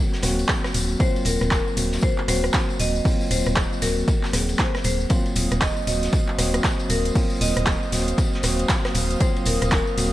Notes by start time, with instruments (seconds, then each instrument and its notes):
Already playing: tine electric piano F#3 A#3 C4 F#4, marimba A#4
0.13 snare, tambourine
0.22 fm bass D#1, tine electric piano F#3 A#3 C4 F#4, cross-stick, snare, open hi-hat, ride, tambourine
0.39 ride, tambourine
0.48 kick, snare, clap, ride, tambourine
0.64 cross-stick, snare, tambourine
0.74 fm bass D#1, open hi-hat, ride, tambourine
0.89 tambourine
0.99 tine electric piano F#3 A#3 C4 F4, marimba C5, kick, ride, tambourine
1.16 ride, tambourine
1.25 fm bass D#1, marimba A#4, open hi-hat, ride, tambourine
1.41 fm bass D#1, cross-stick, ride, tambourine
1.51 marimba A#4, kick, snare, clap, ride, tambourine
1.68 tambourine
1.77 fm bass D#1, tine electric piano F#3 A#3 C4 F#4, open hi-hat, ride, tambourine
1.92 snare, tambourine
2.01 marimba C5, kick, ride, tambourine
2.18 clap
2.27 fm bass D#1, tine electric piano F#3 A#3 C4 F#4, marimba C5, cross-stick, snare, open hi-hat, ride, tambourine
2.44 cross-stick, tambourine
2.54 kick, snare, clap, ride, tambourine
2.69 ride, tambourine
2.79 fm bass D#1, marimba D#5, open hi-hat, ride, tambourine
2.95 tambourine
3.04 tine electric piano F#3 A#3 C4 F4, kick, open hi-hat, tambourine
3.21 tambourine
3.31 fm bass D#1, marimba C5, open hi-hat, ride, tambourine
3.46 fm bass D#1, cross-stick, tambourine
3.56 kick, snare, clap, ride, tambourine
3.73 tambourine
3.82 fm bass D#1, tine electric piano F#3 A#3 C4 F#4, marimba A#4, snare, open hi-hat, ride, tambourine
3.98 tambourine
4.08 kick, ride, tambourine
4.23 snare, clap, tambourine
4.33 fm bass D#1, tine electric piano F#3 A#3 C4 G#4, cross-stick, snare, open hi-hat, ride, tambourine
4.49 ride, tambourine
4.59 marimba C5, kick, snare, clap, ride, tambourine
4.75 cross-stick, snare, tambourine
4.84 fm bass D#1, marimba C5, open hi-hat, ride, tambourine
5.00 tambourine
5.10 tine electric piano F#3 A#3 C4 F4, analog synth pad C5 F5 D#6, kick, closed hi-hat, ride, tambourine
5.26 ride, tambourine
5.35 fm bass D#1, open hi-hat, ride, tambourine
5.51 fm bass D#1, cross-stick, closed hi-hat, ride, tambourine
5.61 marimba D#5, kick, snare, clap, closed hi-hat, ride, tambourine
5.77 tambourine
5.87 fm bass D#1, tine electric piano F#3 A#3 C4 F#4, marimba D#5, open hi-hat, ride, tambourine
6.03 snare, closed hi-hat, tambourine
6.13 kick, closed hi-hat, ride, tambourine
6.28 clap
6.38 fm bass D#1, tine electric piano F#3 A#3 C4 F#4, marimba C5, cross-stick, snare, open hi-hat, ride, tambourine
6.54 cross-stick, closed hi-hat, tambourine
6.64 kick, snare, clap, closed hi-hat, ride, tambourine
6.79 ride, tambourine
6.90 fm bass D#1, marimba A#4, open hi-hat, ride, tambourine
7.05 closed hi-hat, tambourine
7.15 tine electric piano F#3 A#3 C4 F4, kick, closed hi-hat, open hi-hat, tambourine
7.30 tambourine
7.41 fm bass D#1, marimba D#5, open hi-hat, ride, tambourine
7.57 fm bass D#1, cross-stick, closed hi-hat, tambourine
7.66 kick, snare, clap, closed hi-hat, ride, tambourine
7.83 tambourine
7.92 fm bass D#1, tine electric piano F#3 A#3 C4 F#4, snare, open hi-hat, ride, tambourine
8.08 closed hi-hat, tambourine
8.18 kick, closed hi-hat, ride, tambourine
8.33 snare, tambourine
8.43 fm bass D#1, tine electric piano F#3 A#3 C4 F#4, cross-stick, snare, open hi-hat, ride, tambourine
8.59 closed hi-hat, ride, tambourine
8.69 kick, snare, clap, closed hi-hat, ride, tambourine
8.85 cross-stick, snare, tambourine
8.95 fm bass D#1, open hi-hat, ride, tambourine
9.10 closed hi-hat, tambourine
9.20 tine electric piano F#3 A#3 C4 F4, marimba C5, kick, closed hi-hat, ride, tambourine
9.36 ride, tambourine
9.46 fm bass D#1, marimba A#4, open hi-hat, ride, tambourine
9.62 fm bass D#1, cross-stick, closed hi-hat, ride, tambourine
9.71 marimba A#4, kick, snare, clap, closed hi-hat, ride, tambourine
9.87 tambourine
9.97 fm bass D#1, tine electric piano F#3 A#3 C4 F#4, open hi-hat, ride, tambourine